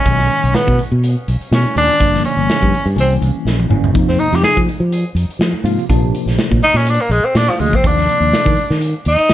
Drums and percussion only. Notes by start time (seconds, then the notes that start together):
0.06 kick, closed hi-hat
0.19 snare, closed hi-hat
0.30 closed hi-hat
0.43 closed hi-hat
0.55 snare, closed hi-hat
0.68 kick, closed hi-hat
0.79 closed hi-hat
1.04 closed hi-hat
1.28 closed hi-hat
1.41 closed hi-hat
1.53 snare, closed hi-hat
1.77 closed hi-hat
1.89 closed hi-hat
2.00 kick, closed hi-hat
2.14 snare
2.24 closed hi-hat
2.38 closed hi-hat
2.50 snare, closed hi-hat
2.62 kick, closed hi-hat
2.74 closed hi-hat
2.87 closed hi-hat
2.98 closed hi-hat
3.12 closed hi-hat
3.22 closed hi-hat
3.47 snare
3.60 high tom
3.71 mid tom
3.84 floor tom
3.95 kick, closed hi-hat
4.08 snare, closed hi-hat
4.19 closed hi-hat
4.33 snare, closed hi-hat
4.44 snare, closed hi-hat
4.57 kick, closed hi-hat
4.69 closed hi-hat
4.92 closed hi-hat
5.17 closed hi-hat
5.30 closed hi-hat
5.41 snare, closed hi-hat
5.66 closed hi-hat
5.79 closed hi-hat
5.90 kick, closed hi-hat
6.15 closed hi-hat
6.28 snare, closed hi-hat
6.39 snare, closed hi-hat
6.52 kick, closed hi-hat
6.63 closed hi-hat
6.76 snare, closed hi-hat
6.87 closed hi-hat
7.00 closed hi-hat
7.12 closed hi-hat
7.35 snare, closed hi-hat
7.48 snare
7.60 open hi-hat
7.73 kick, closed hi-hat
7.84 kick, closed hi-hat
7.97 snare, closed hi-hat
8.09 closed hi-hat
8.22 closed hi-hat
8.33 snare, closed hi-hat
8.46 kick, closed hi-hat
8.57 closed hi-hat
8.71 snare
8.81 closed hi-hat
9.05 closed hi-hat
9.19 closed hi-hat
9.30 snare, closed hi-hat